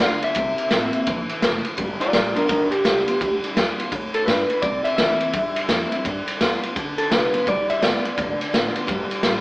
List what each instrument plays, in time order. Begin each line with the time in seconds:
Already playing: steel-string acoustic guitar D3
0.00 upright bass D2, steel-string acoustic guitar G3 B3 F4, clean electric guitar F5, snare, ride
0.22 steel-string acoustic guitar B3 F4, clean electric guitar E5, muted upright bass stroke, ride
0.35 upright bass C2, steel-string acoustic guitar C3, kick, ride
0.58 muted upright bass stroke, ride
0.71 upright bass A1, steel-string acoustic guitar E3 A#3 C4 E4, snare, ride
0.93 muted upright bass stroke, ride
1.07 upright bass A#1, steel-string acoustic guitar E3, kick, ride
1.29 muted upright bass stroke, ride
1.42 upright bass F1, steel-string acoustic guitar F3, snare, ride
1.65 muted upright bass stroke, ride
1.77 upright bass G1, steel-string acoustic guitar G3, kick, ride
2.00 clean electric guitar F4 D5, muted upright bass stroke, ride
2.13 upright bass A1, steel-string acoustic guitar G3 B3 F4, clean electric guitar F4 D5, snare, ride
2.35 steel-string acoustic guitar B3 F4, clean electric guitar D4 A#4, muted upright bass stroke, ride
2.48 upright bass B1, steel-string acoustic guitar D3, clean electric guitar D4 A#4, kick, ride
2.71 clean electric guitar G4, muted upright bass stroke, ride
2.84 upright bass C2, steel-string acoustic guitar G3 B3 F4, snare, ride
3.07 steel-string acoustic guitar B3 F4, muted upright bass stroke, ride
3.21 upright bass D2, steel-string acoustic guitar G3, kick, ride
3.44 muted upright bass stroke, ride
3.56 upright bass E2, steel-string acoustic guitar G3 B3 F4, snare, ride
3.78 steel-string acoustic guitar B3 F4, muted upright bass stroke, ride
3.92 upright bass F2, steel-string acoustic guitar A2, kick, ride
4.14 clean electric guitar A4, muted upright bass stroke, ride
4.26 upright bass G2, steel-string acoustic guitar D3, clean electric guitar B4, snare, ride
4.50 ride
4.62 upright bass C2, steel-string acoustic guitar C3, clean electric guitar D5, kick, ride
4.84 clean electric guitar E5, muted upright bass stroke, ride
4.97 upright bass D2, steel-string acoustic guitar E3 A#3 C4 E4, clean electric guitar E5, snare, ride
5.20 muted upright bass stroke, ride
5.33 upright bass E2, steel-string acoustic guitar G2, kick, ride
5.55 muted upright bass stroke, ride
5.68 upright bass F2, steel-string acoustic guitar E3 A#3 C4 E4, snare, ride
5.92 steel-string acoustic guitar C4 E4, ride
6.05 upright bass G2, steel-string acoustic guitar G3, kick, ride
6.26 muted upright bass stroke, ride
6.40 upright bass E2, steel-string acoustic guitar G3 B3 F4, snare, ride
6.63 steel-string acoustic guitar B3 F4, muted upright bass stroke, ride
6.76 upright bass D2, steel-string acoustic guitar D3, kick, ride
6.98 clean electric guitar A4, muted upright bass stroke, ride
7.11 upright bass C2, steel-string acoustic guitar G3 B3 F4, clean electric guitar B4, snare, ride
7.33 steel-string acoustic guitar B3 F4, muted upright bass stroke, ride
7.47 upright bass B1, steel-string acoustic guitar G3, clean electric guitar D5, kick, ride
7.69 clean electric guitar E5, muted upright bass stroke, ride
7.82 upright bass G1, steel-string acoustic guitar G3 B3 F4, clean electric guitar D5, snare, ride
8.04 steel-string acoustic guitar B3 F4, muted upright bass stroke, ride
8.18 upright bass F1, steel-string acoustic guitar D3, kick, ride
8.40 muted upright bass stroke, ride
8.53 upright bass A1, steel-string acoustic guitar G3 B3 F4, snare, ride
8.74 steel-string acoustic guitar B3 F4, muted upright bass stroke, ride
8.87 upright bass G1, steel-string acoustic guitar G3, kick, ride
9.11 ride
9.23 upright bass A1, steel-string acoustic guitar G3 B3 F4, snare, ride